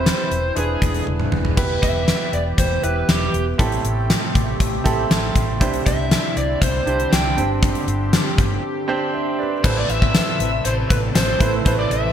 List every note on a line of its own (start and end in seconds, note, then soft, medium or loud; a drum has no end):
0.00 0.55 C3 medium
0.00 0.56 E3 medium
0.00 0.55 C4 medium
0.00 0.58 C4 medium
0.00 0.56 E4 medium
0.00 1.55 E4 medium
0.00 0.59 G4 medium
0.00 0.57 B4 medium
0.00 0.57 B5 medium
0.06 0.53 C5 medium
0.06 snare loud
0.06 closed hi-hat medium
0.31 0.50 E1 medium
0.31 closed hi-hat medium
0.55 0.75 E1 loud
0.55 1.56 D3 medium
0.55 1.28 E3 medium
0.55 1.56 G#3 medium
0.55 1.42 D4 medium
0.55 1.43 E4 medium
0.55 1.43 G#4 medium
0.55 1.04 G#4 medium
0.55 1.43 B4 medium
0.55 closed hi-hat loud
0.82 1.00 E1 medium
0.82 kick medium
0.82 closed hi-hat medium
0.94 closed hi-hat soft
1.07 1.25 E1 medium
1.07 high tom medium
1.20 mid tom medium
1.32 1.51 E1 medium
1.32 mid tom medium
1.45 floor tom medium
1.57 1.76 E1 loud
1.57 3.57 E3 medium
1.57 2.29 E3 medium
1.57 2.43 B3 medium
1.57 3.57 B3 medium
1.57 2.44 E4 medium
1.57 3.57 G4 medium
1.57 2.44 G4 medium
1.57 2.44 B4 medium
1.57 kick loud
1.57 crash medium
1.83 2.10 E1 medium
1.83 2.35 E5 loud
1.83 kick medium
1.83 closed hi-hat medium
2.08 snare loud
2.08 closed hi-hat medium
2.33 2.51 E1 medium
2.33 2.41 D5 medium
2.33 closed hi-hat medium
2.58 2.76 E1 medium
2.58 2.84 C5 medium
2.58 kick medium
2.58 closed hi-hat medium
2.82 3.02 E1 medium
2.82 3.48 B3 medium
2.82 3.48 E4 medium
2.82 3.48 G4 medium
2.82 3.48 B4 medium
2.82 3.07 B4 medium
2.82 closed hi-hat medium
3.09 3.27 E1 medium
3.09 3.44 G4 medium
3.09 snare loud
3.09 closed hi-hat medium
3.34 3.52 E1 medium
3.34 closed hi-hat medium
3.58 3.77 A1 loud
3.58 4.31 A2 medium
3.58 5.59 C3 medium
3.58 5.59 A3 medium
3.58 4.45 C4 medium
3.58 4.45 E4 medium
3.58 4.45 G4 medium
3.58 5.59 G4 medium
3.58 4.46 A4 medium
3.58 kick loud
3.58 closed hi-hat medium
3.72 closed hi-hat soft
3.84 4.11 A1 loud
3.84 closed hi-hat medium
4.10 snare loud
4.10 closed hi-hat medium
4.35 4.53 A1 medium
4.35 kick medium
4.35 closed hi-hat medium
4.60 4.78 A1 loud
4.60 kick medium
4.60 closed hi-hat medium
4.84 5.04 A1 medium
4.84 5.50 C4 medium
4.84 5.50 E4 medium
4.84 5.50 G4 medium
4.84 5.50 A4 loud
4.84 kick medium
4.84 closed hi-hat medium
5.10 5.29 A1 loud
5.10 snare loud
5.10 closed hi-hat medium
5.36 5.61 A1 loud
5.36 kick medium
5.36 closed hi-hat medium
5.60 5.79 C2 loud
5.60 6.32 C3 medium
5.60 9.60 D3 medium
5.60 9.60 C4 medium
5.60 6.47 D4 medium
5.60 7.35 E4 medium
5.60 6.47 E4 medium
5.60 6.47 G4 medium
5.60 6.47 C5 medium
5.60 kick loud
5.60 closed hi-hat medium
5.73 closed hi-hat medium
5.86 6.14 C2 loud
5.86 6.38 E5 medium
5.86 kick medium
5.86 closed hi-hat medium
6.11 snare loud
6.11 closed hi-hat medium
6.37 6.55 C2 medium
6.37 6.60 D5 medium
6.37 closed hi-hat medium
6.62 6.80 C2 medium
6.62 7.14 C5 medium
6.62 kick medium
6.62 closed hi-hat loud
6.86 7.05 C2 loud
6.86 7.36 D4 medium
6.86 7.37 E4 medium
6.86 7.36 G4 medium
6.86 7.36 C5 medium
6.86 closed hi-hat medium
7.00 closed hi-hat soft
7.12 7.39 C2 loud
7.12 7.47 G5 medium
7.12 snare loud
7.12 closed hi-hat loud
7.37 7.73 G1 loud
7.37 8.09 G2 medium
7.37 8.23 C4 medium
7.37 8.24 D4 medium
7.37 9.62 G4 medium
7.37 8.24 G4 medium
7.37 8.24 C5 medium
7.37 closed hi-hat medium
7.63 kick loud
7.63 closed hi-hat medium
7.75 closed hi-hat medium
7.88 8.15 G1 loud
7.88 closed hi-hat medium
8.13 snare loud
8.13 closed hi-hat medium
8.38 8.57 G1 medium
8.38 kick medium
8.38 closed hi-hat medium
8.88 9.53 C4 medium
8.88 9.53 D4 medium
8.88 9.53 G4 medium
8.88 9.13 C5 loud
9.14 9.38 C5 medium
9.14 9.38 E5 medium
9.39 9.63 B4 medium
9.39 9.87 D5 medium
9.63 9.82 A1 loud
9.63 10.63 A2 medium
9.63 10.36 A2 medium
9.63 12.12 C3 medium
9.63 10.65 E3 medium
9.63 10.65 A3 loud
9.63 10.50 C4 medium
9.63 12.12 C4 medium
9.63 10.51 E4 medium
9.63 10.51 A4 medium
9.63 12.12 A4 medium
9.63 10.51 B4 medium
9.63 9.78 C5 loud
9.63 9.76 C6 medium
9.63 kick loud
9.63 crash medium
9.77 9.90 D5 medium
9.77 9.88 D6 medium
9.89 10.17 A1 loud
9.89 10.67 E5 loud
9.89 10.65 E6 loud
9.89 closed hi-hat medium
10.02 10.13 E3 medium
10.02 10.13 C4 medium
10.02 10.13 B4 medium
10.02 kick medium
10.14 snare loud
10.14 closed hi-hat medium
10.14 tambourine medium
10.40 10.58 A1 medium
10.40 10.51 E3 loud
10.40 10.51 C4 loud
10.40 10.51 B4 loud
10.40 closed hi-hat medium
10.64 10.83 A1 loud
10.64 11.13 A2 medium
10.64 11.15 E3 medium
10.64 11.15 A3 medium
10.64 10.72 C5 loud
10.64 10.77 C6 medium
10.64 closed hi-hat loud
10.90 11.09 A1 loud
10.90 10.97 B4 medium
10.90 11.02 B5 medium
10.90 kick medium
10.90 closed hi-hat medium
11.15 11.34 A1 medium
11.15 11.64 A2 medium
11.15 11.66 E3 medium
11.15 11.66 A3 medium
11.15 11.51 C5 medium
11.15 11.51 C6 medium
11.15 snare loud
11.15 closed hi-hat loud
11.15 tambourine medium
11.40 11.59 A1 loud
11.40 11.62 A3 loud
11.40 11.62 C4 medium
11.40 11.62 E4 medium
11.40 11.62 E4 loud
11.40 11.62 A4 medium
11.40 11.62 B4 medium
11.40 11.62 C5 loud
11.40 kick loud
11.40 closed hi-hat medium
11.65 11.84 A1 loud
11.65 12.12 A2 medium
11.65 12.12 E3 medium
11.65 12.12 A3 medium
11.65 12.12 C4 medium
11.65 12.12 E4 medium
11.65 12.12 A4 medium
11.65 12.12 B4 medium
11.65 11.71 C5 loud
11.65 11.72 C6 medium
11.65 kick loud
11.65 closed hi-hat medium
11.79 11.92 D5 medium
11.79 11.91 D6 medium
11.91 12.12 A1 loud
11.91 12.12 E5 loud
11.91 12.12 E6 loud
11.91 closed hi-hat medium
12.04 12.12 E3 medium
12.04 12.12 C4 medium
12.04 12.12 B4 medium